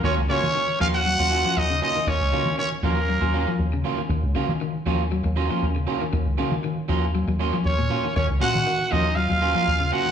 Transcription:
<<
  \new Staff \with { instrumentName = "Trumpet" } { \time 4/4 \key ees \minor \tempo 4 = 118 des''8 des''4 f''16 ges''4~ ges''16 ees''8 ees''8 | des''4 des''8 bes'4. r4 | r1 | r2. des''4 |
des''8 ges''4 ees''8 f''4. ges''8 | }
  \new Staff \with { instrumentName = "Tenor saxophone" } { \time 4/4 \key ees \minor des'8 des'4 f'16 ges'4~ ges'16 ees'8 ees'8 | des'4 des'8 bes4. r4 | r1 | r2. des'4 |
des'8 ges'4 ees'8 f'4. ges'8 | }
  \new Staff \with { instrumentName = "Clean electric guitar" } { \time 4/4 \key ees \minor <ges bes des' f'>16 r16 <ges bes des' f'>16 r8. <ges bes des' f'>16 r8 <bes des' f'>16 <ges bes des' f'>16 <bes des' f'>16 r8 <ges bes des' f'>16 r16 | r8 <ges bes des' f'>16 r8. <ges bes des' f'>16 r8 <des' f'>16 <ges bes des' f'>16 r8. <ges bes des' f'>16 r16 | r8 <ges bes des' f'>16 r8. <ges bes des' f'>16 r8. <ges bes des' f'>16 <bes des' f'>16 r8 <ges bes des' f'>16 r16 | r8 <ges bes des' f'>16 r8. <ges bes des' f'>16 r8. <ges bes des' f'>16 r8. <ges bes des' f'>16 r16 |
r8 <ges bes des' f'>16 r8. <ges bes des' f'>16 r8. <ges bes des' f'>16 <bes des' f'>16 r8 <ges bes des' f'>16 r16 | }
  \new Staff \with { instrumentName = "Clean electric guitar" } { \clef bass \time 4/4 \key ees \minor ees8 des8 ees8 f8 ges16 ges8 f8 des8 ees16 | ees8 des8 ees8 f8 ges16 ges8 f8 des8 ees16 | ees8 des8 ees8 f8 ges16 ges8 f8 des8 ees16 | ees8 des8 ees8 f8 ges16 ges8 f8 bes,8 ees16 |
ees8 bes,8 ees8 f8 ges16 ges8 f8 des8 ees16 | }
  \new Staff \with { instrumentName = "Fingered electric bass" } { \clef bass \time 4/4 \key ees \minor ees,16 des,16 r16 ees8 r16 ees,8. ees,8 r16 ees,8 r8 | ees,16 des,16 r16 ees8 r16 ees,8. ees,8 r16 ees,8 r8 | ees,16 des,16 r16 ees8 r16 ees,8. ees,8 r16 ees,8 r8 | ees,16 des,16 r16 ees8 r16 ees,8. ees,8 r16 ees,8 r8 |
ees,16 des,16 r16 ees8 r16 ees,8. ees,8 r16 ees,8 r8 | }
>>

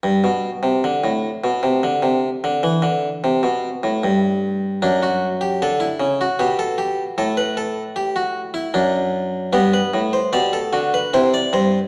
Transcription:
<<
  \new Staff \with { instrumentName = "Harpsichord" } { \time 3/4 \key g \major \tempo 4 = 76 r2. | r2. | d'16 fis'8 g'16 a'16 e'8 fis'16 g'16 a'16 g'8 | a'16 b'16 a'8 g'16 fis'8 e'16 d'4 |
b4 g'8 fis'8 e'4 | }
  \new Staff \with { instrumentName = "Harpsichord" } { \clef bass \time 3/4 \key g \major << { g,16 b,8 c16 d16 a,8 b,16 c16 d16 c8 | d16 e16 d8 c16 b,8 a,16 g,4 | r2. | r2. |
g'16 b'8 c''16 d''16 a'8 b'16 c''16 d''16 c''8 | } \\ { r2. | r2. | fis,4 d8 cis8 b,4 | a,2 fis,4 |
g,8 a,8 b,8 d8 c8 g,8 | } >> }
>>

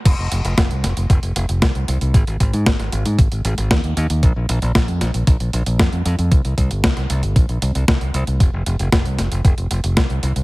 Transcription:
<<
  \new Staff \with { instrumentName = "Fingered electric bass" } { \clef bass \time 4/4 \key f \minor \tempo 4 = 115 f,,16 f,,16 f,,16 f,,16 f,,16 c,16 f,,16 f,,16 f,,16 f,,16 f,,16 f,,16 c,16 c,16 c,16 c,16 | aes,,16 aes,,16 aes,,16 aes,16 aes,,16 aes,,16 aes,,16 aes,16 aes,,16 aes,,16 aes,,16 aes,,16 ees,16 ees,16 ees,16 ees,16 | bes,,16 bes,,16 bes,,16 bes,,16 r16 f,16 bes,,16 bes,,16 bes,,16 bes,,16 bes,,16 bes,,16 f,16 f,16 f,16 f,16 | c,16 c,16 c,16 g,,16 c,16 c,16 c,16 g,,16 bes,,16 bes,,16 c,16 c,16 c,16 c,16 c,16 c,16 |
f,,16 f,,16 f,,16 f,,16 f,,16 c,16 f,,16 f,,16 f,,16 f,,16 f,,16 f,,16 c,16 c,16 c,16 c,16 | }
  \new DrumStaff \with { instrumentName = "Drums" } \drummode { \time 4/4 <cymc hh bd>8 hh16 hh16 <hh bd sn>16 hh16 <hh sn>16 hh16 <hh bd>16 hh16 hh16 hh16 <hh bd sn>16 hh16 hh16 hh16 | <hh bd>16 hh16 <hh bd>16 hh16 <hh bd sn>16 <hh sn>16 hh16 hh16 <hh bd>16 hh16 hh16 hh16 <hh bd sn>16 hh16 hh16 hh16 | <hh bd>8 hh16 hh16 <hh bd sn>16 hh16 <hh sn>16 hh16 <hh bd>16 hh16 hh16 hh16 <hh bd sn>16 hh16 hh16 hh16 | <hh bd>16 hh16 <hh bd>16 hh16 <hh bd sn>16 <hh sn>16 hh16 hh16 <hh bd>16 hh16 hh16 hh16 <hh bd sn>16 hh16 hh16 hh16 |
<hh bd>8 hh16 hh16 <hh bd sn>16 hh16 <hh sn>16 hh16 <hh bd>16 hh16 hh16 hh16 <hh bd sn>16 hh16 hh16 hh16 | }
>>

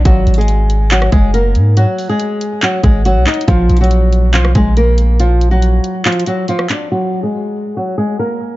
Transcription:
<<
  \new Staff \with { instrumentName = "Nylon-string guitar" } { \time 4/4 \key ees \minor \tempo 4 = 140 <ges ges'>8. <aes aes'>4~ <aes aes'>16 <ges ges'>8 <aes aes'>8 <bes bes'>4 | <ges ges'>8. <aes aes'>4~ <aes aes'>16 <ges ges'>8 <aes aes'>8 <ges ges'>8 <ees' ees''>8 | <f f'>8. <ges ges'>4~ <ges ges'>16 <f f'>8 <aes aes'>8 <bes bes'>4 | <f f'>8. <ges ges'>4~ <ges ges'>16 <f f'>8 <ges ges'>8 <f f'>8 <d' d''>8 |
<ges ges'>8. <aes aes'>4~ <aes aes'>16 <ges ges'>8 <aes aes'>8 <bes bes'>4 | }
  \new Staff \with { instrumentName = "808-style bass" } { \clef bass \time 4/4 \key ees \minor aes,,8 aes,,2 ges,,4 aes,8~ | aes,16 r2 r16 aes,,8. ces,16 r8 | bes,,8 bes,,4. ces,8 bes,,4.~ | bes,,4. r2 r8 |
r1 | }
  \new DrumStaff \with { instrumentName = "Drums" } \drummode { \time 4/4 \tuplet 3/2 { <hh bd>16 r16 r16 hh16 hh16 hh16 } hh8 hh8 <hc hh>16 ss16 <hh bd>8 hh8 hh8 | hh8 hho8 hh8 hh8 <hc hh>8 <hh bd>8 \tuplet 3/2 { hh16 r16 r16 <hc hh>16 hh16 hh16 } | \tuplet 3/2 { <hh bd>16 r16 r16 hh16 hh16 hh16 } hh8 hh8 <hc hh>16 ss16 <hh bd>8 hh8 hh8 | hh8 hh8 hh8 hh8 \tuplet 3/2 { <hc hh>16 hh16 hh16 hh16 r16 r16 } hh16 ss16 <hc hh>8 |
r4 r4 r4 r4 | }
>>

